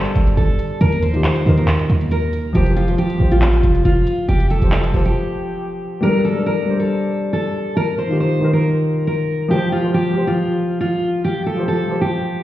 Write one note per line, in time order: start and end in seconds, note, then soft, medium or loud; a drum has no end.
0.00 0.83 G3 medium
0.00 0.83 D4 medium
0.00 0.34 A4 medium
0.00 0.83 A4 medium
0.00 0.83 A#4 loud
0.00 0.41 C5 medium
0.05 closed hi-hat medium
0.15 0.36 G1 loud
0.15 closed hi-hat medium
0.27 closed hi-hat medium
0.37 0.58 G1 loud
0.37 0.78 A4 medium
0.37 closed hi-hat medium
0.59 closed hi-hat medium
0.81 1.23 D#2 loud
0.81 0.98 A#4 loud
0.81 closed hi-hat medium
0.92 closed hi-hat medium
1.02 1.20 C5 medium
1.02 closed hi-hat medium
1.12 1.38 D#3 medium
1.12 1.39 D#4 medium
1.12 1.40 F4 medium
1.12 closed hi-hat medium
1.16 1.41 G4 medium
1.24 1.56 C5 medium
1.24 clap medium
1.24 closed hi-hat medium
1.36 closed hi-hat medium
1.44 1.67 D#2 loud
1.44 2.13 D#3 medium
1.44 2.14 D#4 medium
1.44 2.15 F4 medium
1.44 open hi-hat medium
1.49 2.16 A#4 medium
1.57 2.08 A#4 medium
1.57 closed hi-hat medium
1.68 clap loud
1.68 closed hi-hat medium
1.79 closed hi-hat medium
1.90 2.52 D#2 loud
1.90 closed hi-hat medium
2.01 closed hi-hat medium
2.11 2.52 A#4 medium
2.11 closed hi-hat medium
2.33 closed hi-hat medium
2.53 2.97 F1 loud
2.53 2.80 F3 loud
2.53 2.80 F4 medium
2.53 2.72 G4 loud
2.53 2.81 G4 medium
2.53 closed hi-hat medium
2.57 2.82 C5 medium
2.66 closed hi-hat medium
2.77 2.94 F4 medium
2.77 closed hi-hat medium
2.86 3.13 F3 medium
2.86 3.13 F4 medium
2.86 3.14 G4 medium
2.86 closed hi-hat medium
2.91 3.15 C5 medium
2.98 3.30 G4 medium
2.98 closed hi-hat medium
3.10 closed hi-hat medium
3.18 3.62 A1 loud
3.18 3.87 F3 medium
3.18 3.88 F4 medium
3.18 3.89 G4 medium
3.22 3.89 C5 medium
3.31 3.82 F4 medium
3.31 closed hi-hat medium
3.42 clap loud
3.42 closed hi-hat medium
3.53 closed hi-hat medium
3.63 3.84 F1 loud
3.63 closed hi-hat medium
3.75 closed hi-hat medium
3.85 4.06 F1 loud
3.85 4.26 F4 medium
3.85 closed hi-hat medium
4.07 closed hi-hat medium
4.29 4.61 F1 loud
4.29 4.46 G4 loud
4.29 closed hi-hat medium
4.40 closed hi-hat medium
4.50 4.68 A4 medium
4.50 closed hi-hat medium
4.59 4.93 F1 loud
4.59 4.86 F3 medium
4.59 4.87 F4 medium
4.59 4.87 G4 medium
4.59 closed hi-hat medium
4.64 4.88 C5 medium
4.72 5.03 A4 medium
4.72 clap medium
4.72 closed hi-hat soft
4.84 closed hi-hat medium
4.92 5.15 F1 loud
4.92 5.61 F3 medium
4.92 5.62 F4 medium
4.92 5.63 G4 medium
4.92 open hi-hat medium
4.96 5.63 C5 medium
5.05 5.99 G4 medium
5.05 closed hi-hat medium
6.01 6.27 G3 loud
6.01 6.28 D4 medium
6.01 6.29 A4 medium
6.01 6.20 A#4 loud
6.05 6.30 A#4 loud
6.24 6.42 A4 medium
6.34 6.60 G3 medium
6.34 6.61 D4 medium
6.34 6.62 A4 medium
6.38 6.62 A#4 medium
6.46 6.77 A#4 medium
6.65 7.35 G3 medium
6.65 7.36 D4 medium
6.65 7.36 A4 medium
6.70 7.37 C5 medium
6.80 7.30 A4 medium
7.33 7.74 A4 medium
7.77 7.94 A#4 loud
7.98 8.15 C5 medium
8.08 8.34 D#3 medium
8.08 8.35 D#4 medium
8.08 8.35 F4 medium
8.12 8.36 G4 medium
8.20 8.51 C5 medium
8.40 9.09 D#3 medium
8.40 9.10 D#4 medium
8.40 9.11 F4 medium
8.44 9.11 A#4 medium
8.53 9.04 A#4 medium
9.07 9.48 A#4 medium
9.48 9.75 F3 loud
9.48 9.76 F4 medium
9.48 9.68 G4 loud
9.48 9.77 G4 medium
9.53 9.77 C5 loud
9.72 9.89 F4 medium
9.82 10.08 F3 medium
9.82 10.09 F4 medium
9.82 10.10 G4 medium
9.87 10.11 C5 medium
9.94 10.25 G4 medium
10.13 10.83 F3 medium
10.13 10.84 F4 medium
10.13 10.84 G4 medium
10.18 10.85 C5 medium
10.27 10.78 F4 medium
10.81 11.22 F4 medium
11.24 11.41 G4 loud
11.46 11.63 A4 medium
11.55 11.82 F3 medium
11.55 11.82 F4 medium
11.55 11.83 G4 medium
11.60 11.84 C5 medium
11.68 11.99 A4 medium
11.87 12.43 F3 medium
11.87 12.43 F4 medium
11.87 12.43 G4 medium
11.92 12.43 C5 medium
12.01 12.43 G4 medium